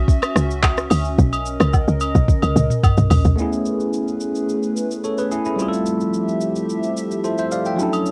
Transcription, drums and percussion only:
0.08 kick loud
0.08 shaker medium
0.22 cross-stick medium
0.22 high agogo medium
0.22 shaker medium
0.36 cross-stick loud
0.36 shaker loud
0.51 shaker medium
0.63 kick loud
0.63 clap medium
0.63 high agogo medium
0.63 low woodblock medium
0.63 shaker medium
0.77 cross-stick medium
0.77 shaker medium
0.90 open hi-hat medium
0.90 high agogo medium
0.90 shaker loud
1.05 shaker soft
1.18 kick loud
1.18 shaker medium
1.33 high agogo medium
1.33 shaker medium
1.45 shaker medium
1.60 cross-stick medium
1.60 high agogo medium
1.60 shaker medium
1.73 kick loud
1.73 low woodblock medium
1.73 shaker medium
1.88 shaker soft
2.00 high agogo medium
2.00 shaker medium
2.15 kick medium
2.15 shaker medium
2.28 kick loud
2.28 high tom medium
2.28 shaker medium
2.42 high tom medium
2.42 high agogo medium
2.42 shaker medium
2.56 mid tom medium
2.56 shaker loud
2.70 mid tom medium
2.70 shaker medium
2.84 kick loud
2.84 mid tom medium
2.84 high agogo medium
2.84 low woodblock medium
2.84 shaker medium
2.97 mid tom medium
2.97 shaker medium
3.10 floor tom loud
3.10 open hi-hat medium
3.10 high agogo medium
3.10 shaker loud
3.25 floor tom medium
3.25 shaker soft
3.39 shaker medium
3.53 shaker medium
3.66 shaker medium
3.80 shaker soft
3.93 shaker medium
4.08 shaker soft
4.20 shaker medium
4.35 shaker medium
4.49 shaker medium
4.63 shaker soft
4.77 shaker medium
4.91 shaker medium
5.04 shaker medium
5.18 shaker medium
5.32 shaker medium
5.45 shaker soft
5.59 shaker medium
5.73 shaker medium
5.86 shaker medium
6.00 shaker soft
6.14 shaker medium
6.28 shaker soft
6.41 shaker medium
6.55 shaker medium
6.69 shaker medium
6.83 shaker soft
6.97 shaker medium
7.11 shaker medium
7.24 shaker medium
7.38 shaker medium
7.51 shaker medium
7.65 shaker soft
7.79 shaker medium
7.93 high agogo medium
7.93 shaker medium
8.06 shaker medium

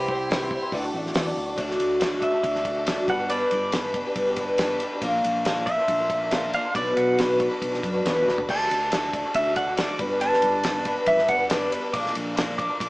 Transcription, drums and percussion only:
0.08 kick medium
0.31 snare loud
0.31 open hi-hat medium
0.51 kick medium
0.72 kick medium
0.72 open hi-hat medium
1.06 snare soft
1.14 snare loud
1.14 open hi-hat medium
1.58 kick loud
1.58 ride medium
1.70 snare soft
1.80 ride medium
2.01 snare loud
2.01 ride medium
2.22 kick medium
2.22 ride medium
2.44 kick medium
2.44 ride medium
2.55 snare soft
2.65 kick medium
2.65 ride medium
2.87 snare loud
2.87 ride medium
3.08 kick loud
3.08 ride medium
3.30 ride medium
3.51 ride medium
3.72 snare loud
3.72 ride medium
3.94 kick medium
3.94 ride medium
4.16 kick medium
4.16 ride medium
4.36 kick medium
4.36 ride medium
4.58 snare loud
4.58 ride loud
4.80 ride medium
5.02 kick loud
5.02 ride medium
5.24 ride medium
5.45 snare loud
5.45 ride loud
5.67 kick medium
5.67 ride medium
5.88 kick medium
5.88 ride medium
6.10 kick medium
6.10 ride medium
6.31 snare loud
6.31 ride medium
6.53 ride medium
6.75 kick loud
6.75 ride medium
6.97 ride medium
7.19 snare loud
7.19 ride medium
7.40 kick medium
7.40 ride medium
7.62 kick medium
7.62 ride medium
7.74 snare soft
7.83 kick medium
7.83 ride medium
8.06 snare loud
8.06 ride medium
8.28 snare medium
8.38 floor tom medium
8.49 kick loud
8.49 crash loud
8.71 ride medium
8.92 snare loud
8.92 ride medium
9.13 kick medium
9.13 ride medium
9.34 kick medium
9.34 ride loud
9.56 kick medium
9.56 ride medium
9.77 snare loud
9.77 ride loud
9.99 kick medium
9.99 ride medium
10.21 ride medium
10.33 snare soft
10.42 ride medium
10.64 snare loud
10.64 ride medium
10.85 kick medium
10.85 ride medium
11.06 kick medium
11.06 ride medium
11.18 snare soft
11.28 kick medium
11.28 ride medium
11.50 snare loud
11.50 ride loud
11.72 ride medium
11.94 kick loud
11.94 ride loud
12.06 snare soft
12.15 ride medium
12.37 snare loud
12.37 ride loud
12.59 kick medium
12.59 ride medium
12.80 kick medium
12.80 ride loud

